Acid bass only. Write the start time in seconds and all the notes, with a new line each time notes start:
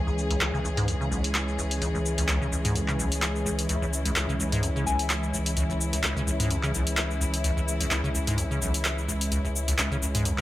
0.07 C#2
0.30 C#2
0.41 C#2
0.54 C#3
0.64 C#2
0.77 G#2
0.88 E2
1.01 C#3
1.11 B1
1.58 C#2
1.82 C#2
1.94 C#2
2.18 C#2
2.29 C#2
2.41 C#3
2.52 C#2
2.65 G#2
2.75 E2
2.88 C#3
2.99 B1
3.46 C#2
3.69 C#2
3.82 C#2
4.05 C#2
4.16 C#2
4.29 C#3
4.39 C#2
4.52 G#2
4.63 E2
4.76 C#3
4.86 B1
5.33 C#2
5.57 C#2
5.70 C#2
5.93 C#2
6.04 C#2
6.16 C#3
6.27 C#2
6.40 G#2
6.50 E2
6.63 C#3
6.74 B1
7.21 C#2
7.44 C#2
7.57 C#2
7.80 C#2
7.91 C#2
8.04 C#3
8.14 C#2
8.27 G#2
8.38 E2
8.51 C#3
8.61 B1
9.08 C#2
9.32 C#2
9.45 C#2
9.68 C#2
9.79 C#2
9.91 C#3
10.02 C#2
10.15 G#2
10.25 E2